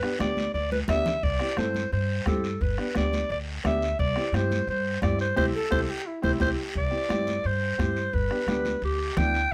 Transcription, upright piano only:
0.02 B3 D4 G4
0.19 B3 D4 G4
0.89 B3 D4 G4
1.40 C4 E4 G4
1.58 C4 E4 A4
2.26 C4 E4 G4
2.78 B3 D4 G4
2.95 B3 D4 G4
3.64 B3 D4 G4
4.16 C4 E4 G4
4.34 C4 E4 G4
5.02 C4 E4 G4
5.36 C4 E4 G4
5.70 C4 E4 G4
6.22 C4 E4 G4
6.40 C4 E4 G4
6.91 C4 E4 G4
7.09 C4 E4 G4
7.78 C4 E4 G4
8.30 B3 D4 G4
8.48 B3 D4 G4
9.17 B3 D4 E4

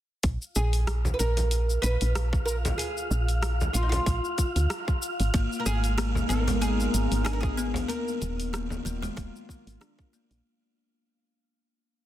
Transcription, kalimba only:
5.34 A#3
5.98 A#3
6.30 B3
6.48 G#3
6.61 A#3
7.25 D4
7.57 B3
7.89 A#3
8.53 A#3
8.85 A#3
9.03 G#3
9.17 A#3
9.81 D4
10.13 A#3

